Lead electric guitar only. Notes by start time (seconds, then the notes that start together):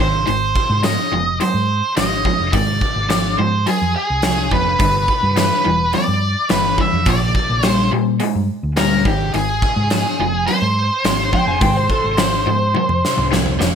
0.00 C5
0.27 C5
0.84 D#5
1.40 C5
1.97 D#5
2.53 D5
3.38 C5
3.67 G#4
3.96 G#4
4.53 B4
5.38 B4
5.94 D5
6.51 B4
6.80 E5
7.08 D5
7.66 C5
8.77 A#4
9.06 G4
9.34 G#4
10.47 C5